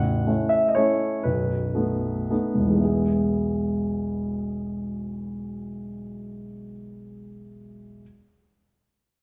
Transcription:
Already playing: A0 A1 F#5
0.27 A3 C#4 E4
0.49 E5
0.69 D#5
0.75 A3 C#4 E4 C#5
1.23 B0 B1 B4
1.75 A3 B3 D#4
2.30 A3 B3 D#4
2.54 E1
2.59 B1
2.65 E3
2.70 G#3
2.75 B3
2.80 E4 G#4

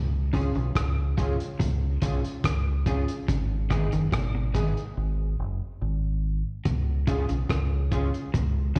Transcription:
Already playing: C#2
0.33 C#3 C#4 F4 G#4, kick, open hi-hat
0.55 B1 C#3, closed hi-hat
0.75 C#2, kick, cross-stick, closed hi-hat
1.17 C#4 F4 G#4, kick, closed hi-hat
1.40 closed hi-hat
1.59 C#2 B2, kick, closed hi-hat
2.02 B1 C#3 C#4 F4 G#4, kick, closed hi-hat
2.25 closed hi-hat
2.44 C#2, kick, cross-stick, closed hi-hat
2.86 C#4 F4 G#4, kick, closed hi-hat
3.08 closed hi-hat
3.28 G#1 C#3, kick, closed hi-hat
3.70 D#3 B3 D#4 G#4, kick, cross-stick, closed hi-hat
3.92 F#1 D#3, closed hi-hat
4.12 G#1 B2, kick, cross-stick, closed hi-hat
4.35 B2
4.54 D#3 B3 D#4 G#4, kick, closed hi-hat
4.77 closed hi-hat
4.97 G#1
5.39 F#1
5.82 G#1
6.65 C#2 B2, kick, closed hi-hat
7.07 C#3 C#4 F4 G#4, kick, closed hi-hat
7.29 B1 C#3, closed hi-hat
7.49 C#2, kick, cross-stick, closed hi-hat
7.91 C#4 F4 G#4, kick, closed hi-hat
8.14 closed hi-hat
8.34 C#2 B2, kick, closed hi-hat
8.76 C#3 C#4, kick, closed hi-hat

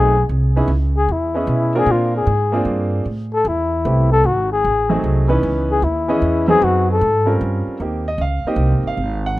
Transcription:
Already playing: B1 A3 C4 D#4 F#4 G#4
0.29 C2
0.56 B3 C#4 D#4 E4 G#4
0.68 C#2
0.97 G#4
1.09 E2 E4
1.34 B3 C#4 E4 G#4 D#5
1.47 B2
1.75 A#3 C4 D4 F4 G#4 A#4
1.86 A#2
1.91 F4
2.17 G#4
2.27 G#2
2.52 A#3 C4 D4 F4 G#4
2.65 G2
3.05 A2
3.34 A4
3.45 E2 E4
3.85 C2 A3 B3 C4 E4 G4
4.12 A4
4.24 G#1 F#4
4.52 G#4
4.65 A1
4.89 F#3 A3 C4 D#4 G#4
5.04 C2
5.28 E3 B3 C#4 D#4 B4
5.43 C#2
5.71 G#4
5.82 D#2 E4
6.08 E3 B3 C#4 G#4 D#5
6.22 E2
6.48 F#3 B3 C4 D#4 G#4
6.62 F#2 F#4
6.91 A4
7.01 G#2
7.25 G3 C4 C#4 F4 A#4
7.41 G2
7.67 muted upright bass stroke
7.80 D#2 A#3 C4 D#4 G4
8.08 D#5
8.18 C#2 F5
8.45 A#3 C4 D#4 G4 D#5, muted upright bass stroke
8.56 C2
8.72 G#1
8.83 G1
8.87 F5
8.97 G#1
9.26 F#5

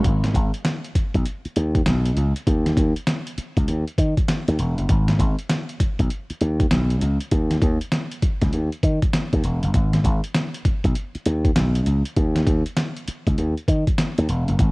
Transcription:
0.04 G#1, kick, closed hi-hat
0.24 snare, closed hi-hat
0.35 G#1, kick, closed hi-hat
0.54 closed hi-hat
0.65 snare, closed hi-hat
0.85 closed hi-hat
0.95 muted slap bass stroke, kick, closed hi-hat
1.14 B1, kick, closed hi-hat
1.26 closed hi-hat
1.45 muted slap bass stroke, closed hi-hat
1.56 D#2, closed hi-hat
1.75 kick, closed hi-hat
1.86 B1, snare, closed hi-hat
2.06 closed hi-hat
2.17 C#2, closed hi-hat
2.36 closed hi-hat
2.47 D#2, kick, closed hi-hat
2.66 snare, closed hi-hat
2.77 D#2, kick, closed hi-hat
2.96 closed hi-hat
3.07 snare, closed hi-hat
3.27 closed hi-hat
3.38 muted slap bass stroke, closed hi-hat
3.57 C#2, kick, closed hi-hat
3.68 D#2, closed hi-hat
3.88 closed hi-hat
3.98 D#3, kick, closed hi-hat
4.17 kick, closed hi-hat
4.28 snare, closed hi-hat
4.48 D#2, closed hi-hat
4.59 E1, closed hi-hat
4.78 F#1, closed hi-hat
4.89 G#1, kick, closed hi-hat
5.08 snare, closed hi-hat
5.19 G#1, kick, closed hi-hat
5.39 closed hi-hat
5.49 snare, closed hi-hat
5.69 closed hi-hat
5.80 muted slap bass stroke, kick, closed hi-hat
5.99 B1, kick, closed hi-hat
6.10 closed hi-hat
6.30 muted slap bass stroke, closed hi-hat
6.41 D#2, closed hi-hat
6.60 kick, closed hi-hat
6.71 B1, snare, closed hi-hat
6.90 closed hi-hat
7.01 C#2, closed hi-hat
7.20 closed hi-hat
7.31 D#2, kick, closed hi-hat
7.51 snare, closed hi-hat
7.62 D#2, kick, closed hi-hat
7.81 closed hi-hat
7.92 snare, closed hi-hat
8.11 closed hi-hat
8.22 muted slap bass stroke, kick, closed hi-hat
8.41 C#2, kick, snare, closed hi-hat
8.53 D#2, closed hi-hat
8.72 closed hi-hat
8.83 D#3, kick, closed hi-hat
9.02 kick, closed hi-hat
9.13 snare, closed hi-hat
9.33 D#2, kick, closed hi-hat
9.44 E1, closed hi-hat
9.63 F#1, closed hi-hat
9.74 G#1, kick, closed hi-hat
9.93 snare, closed hi-hat
10.04 G#1, kick, closed hi-hat
10.24 closed hi-hat
10.35 snare, closed hi-hat
10.54 closed hi-hat
10.65 muted slap bass stroke, kick, closed hi-hat
10.84 B1, kick, closed hi-hat
10.95 closed hi-hat
11.15 muted slap bass stroke, closed hi-hat
11.26 D#2, closed hi-hat
11.45 kick, closed hi-hat
11.56 B1, snare, closed hi-hat
11.75 closed hi-hat
11.86 C#2, closed hi-hat
12.05 closed hi-hat
12.16 D#2, kick, closed hi-hat
12.36 snare, closed hi-hat
12.47 D#2, kick, closed hi-hat
12.66 closed hi-hat
12.77 snare, closed hi-hat
12.96 closed hi-hat
13.08 muted slap bass stroke, closed hi-hat
13.27 C#2, kick, closed hi-hat
13.38 D#2, closed hi-hat
13.57 closed hi-hat
13.68 D#3, kick, closed hi-hat
13.87 kick, closed hi-hat
13.98 snare, closed hi-hat
14.18 D#2, closed hi-hat
14.29 E1, closed hi-hat
14.48 F#1, closed hi-hat
14.59 G#1, kick, closed hi-hat

